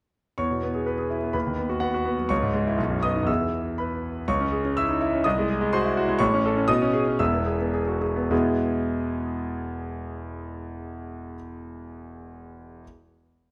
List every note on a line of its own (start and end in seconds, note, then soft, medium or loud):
0.38 1.31 E2 medium
0.38 1.30 C#5 medium
0.38 1.34 C#6 medium
0.51 0.70 B2 soft
0.63 0.82 B3 soft
0.74 0.94 G#4 soft
0.86 1.06 B4 medium
0.98 1.17 G#4 medium
1.10 1.29 E4 soft
1.23 1.35 B3 soft
1.33 2.28 D#2 medium
1.33 1.78 B4 soft
1.33 1.81 B5 medium
1.47 1.65 D#3 soft
1.58 1.77 B3 soft
1.69 1.79 F#4 medium
1.80 2.01 B3 medium
1.80 1.92 F#4 medium
1.80 2.30 F#5 medium
1.94 2.14 F#4 medium
2.05 2.25 B3 medium
2.19 2.31 F#3 medium
2.29 2.77 C#2 medium
2.29 2.99 C#5 medium
2.29 3.02 C#6 medium
2.42 2.61 G#2 medium
2.54 2.73 G#3 medium
2.67 2.79 E4 medium
2.78 3.26 B1 medium
2.90 3.10 F#2 medium
3.03 3.23 B3 medium
3.03 3.27 D#5 medium
3.03 3.28 D#6 medium
3.15 3.28 D#4 medium
3.23 4.21 E2 medium
3.23 4.22 E3 soft
3.23 4.23 B3 soft
3.23 3.78 E6 medium
3.27 4.23 G#4 soft
3.27 3.75 E5 soft
3.78 4.25 B4 soft
3.78 4.28 B5 medium
4.28 5.22 C#2 medium
4.28 4.73 C#5 medium
4.28 4.76 C#6 medium
4.40 4.60 C#4 medium
4.52 4.71 G#4 medium
4.65 4.84 C#4 medium
4.77 4.96 E4 medium
4.77 5.22 E5 medium
4.77 5.25 E6 medium
4.88 5.01 D#4 medium
5.01 5.20 E4 medium
5.13 5.25 C#4 medium
5.24 6.17 C2 medium
5.24 5.69 D#5 medium
5.24 5.72 D#6 medium
5.39 5.57 G#3 medium
5.49 5.68 G#4 medium
5.61 5.80 G#3 medium
5.73 5.92 F#4 medium
5.73 6.17 C5 medium
5.73 6.20 C6 medium
5.85 5.96 E4 medium
5.97 6.15 F#4 medium
6.08 6.20 G#3 medium
6.19 6.67 A1 medium
6.19 6.67 A2 medium
6.19 6.65 C#5 medium
6.19 6.68 C#6 loud
6.34 6.52 C#4 medium
6.46 6.64 A4 medium
6.57 6.69 C#4 medium
6.68 7.18 B2 medium
6.68 7.16 D#5 medium
6.68 7.19 D#6 loud
6.82 7.02 C#4 medium
6.93 7.14 G#4 medium
7.08 7.20 C#4 medium
7.19 8.28 E1 medium
7.19 8.28 E2 medium
7.19 7.98 E5 medium
7.19 8.02 E6 medium
7.33 7.54 B3 medium
7.46 7.68 G#4 medium
7.59 7.82 B3 medium
7.73 7.96 G#4 medium
7.87 8.02 F#4 soft
8.01 8.25 G#4 medium
8.16 8.30 B3 medium
8.31 11.34 E2 medium
8.31 11.34 B2 medium
8.31 11.34 G#3 medium
8.31 11.35 B3 medium
8.31 11.35 E4 medium
8.31 11.35 G#4 medium